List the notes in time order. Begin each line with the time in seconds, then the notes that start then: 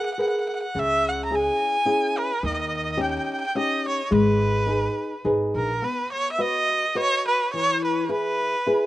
0.05 F#5
0.14 F#5
0.18 G#4 A#4 B4 F#5
0.29 F#5
0.40 F#5
0.48 F#5
0.55 F#5
0.63 F#5
0.75 C#2 C#3 E5
1.09 F#5
1.25 A#5
1.30 C#4 E4 G#4
1.35 G#5
1.85 C#4 E4 G#4
2.18 B4
2.43 D#2 D#3 D#5
2.53 D#5
2.61 D#5
2.68 D#5
2.76 D#5
2.85 D#5
2.91 D#5
2.97 C#4 D#4 G4
3.02 G5
3.10 G5
3.18 G5
3.26 G5
3.33 G5
3.40 G5
3.46 G5
3.55 C#4 D#4 G4 D#5
3.88 C#5
4.11 G#1 G#3
4.15 B4
4.67 D#4 G#4 B4
5.25 G#1 D#4 G#4 B4
5.55 A#1 A#4
5.82 B3 B4
6.13 C#5
6.32 E5
6.38 F#4 B4 D#5
6.95 F#4 B4 C#5 D#5
7.28 B4
7.53 E3 C#5
7.84 B4
8.09 E4 G#4 B4
8.66 E4 G#4 B4